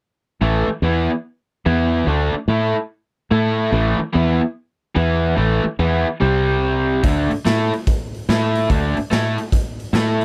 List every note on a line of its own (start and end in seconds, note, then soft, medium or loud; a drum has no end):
0.41 0.66 A1 medium
0.41 0.67 A2 medium
0.41 0.68 E3 medium
0.41 0.68 A3 medium
0.68 muted overdriven electric guitar stroke medium
0.82 1.07 E2 medium
0.82 1.09 E3 medium
0.82 1.09 B3 medium
0.82 1.09 E4 loud
1.66 2.04 E2 medium
1.66 2.07 E3 medium
1.66 2.07 B3 medium
1.66 2.07 E4 loud
2.07 2.32 D2 medium
2.07 2.33 D3 medium
2.07 2.33 A3 medium
2.07 2.34 D4 medium
2.34 muted fingered electric bass stroke soft
2.34 muted overdriven electric guitar stroke medium
2.48 2.73 A2 medium
2.48 2.74 A3 medium
2.48 2.75 E4 loud
2.48 2.75 A4 medium
3.31 3.69 A2 medium
3.31 3.71 A3 medium
3.31 3.72 E4 medium
3.31 3.72 A4 medium
3.71 3.97 A1 medium
3.71 3.98 A2 medium
3.71 3.98 E3 medium
3.71 3.98 A3 medium
3.99 muted fingered electric bass stroke soft
3.99 muted overdriven electric guitar stroke medium
4.13 4.39 E2 medium
4.13 4.39 E3 medium
4.13 4.40 B3 loud
4.13 4.40 E4 medium
4.96 5.35 E2 loud
4.96 5.35 E3 medium
4.96 5.36 B3 medium
4.96 5.37 E4 medium
5.36 5.63 A1 medium
5.36 5.63 A2 medium
5.36 5.63 E3 medium
5.36 5.64 A3 medium
5.64 muted overdriven electric guitar stroke medium
5.79 6.04 E2 medium
5.79 6.05 E3 medium
5.79 6.05 B3 medium
5.79 6.06 E4 loud
6.20 7.00 C2 medium
6.20 7.03 C3 medium
6.20 7.03 G3 medium
6.20 7.04 C4 medium
7.03 7.29 D2 medium
7.03 7.29 D3 medium
7.03 7.30 A3 medium
7.03 7.30 D4 medium
7.03 kick medium
7.03 open hi-hat medium
7.31 muted fingered electric bass stroke soft
7.31 muted overdriven electric guitar stroke medium
7.31 open hi-hat soft
7.45 7.70 A2 medium
7.45 7.71 A3 medium
7.45 7.71 E4 medium
7.45 7.72 A4 loud
7.45 snare loud
7.45 open hi-hat medium
7.74 open hi-hat soft
7.87 kick loud
7.87 open hi-hat medium
8.14 open hi-hat soft
8.29 8.67 A2 medium
8.29 8.69 A3 medium
8.29 8.70 E4 loud
8.29 8.70 A4 medium
8.29 snare medium
8.29 open hi-hat medium
8.55 open hi-hat medium
8.70 8.95 D2 medium
8.70 8.96 D3 medium
8.70 8.96 A3 medium
8.70 8.96 D4 medium
8.70 kick medium
8.70 open hi-hat medium
8.97 muted overdriven electric guitar stroke medium
8.97 muted fingered electric bass stroke soft
8.97 open hi-hat soft
9.11 9.37 A2 medium
9.11 9.37 A3 medium
9.11 9.37 E4 medium
9.11 9.37 A4 loud
9.11 snare loud
9.11 open hi-hat medium
9.38 open hi-hat medium
9.52 kick loud
9.52 open hi-hat medium
9.80 open hi-hat soft
9.93 10.25 A2 medium
9.93 10.25 A3 medium
9.93 10.25 E4 medium
9.93 10.25 A4 medium
9.93 snare loud
9.93 open hi-hat medium
10.21 open hi-hat soft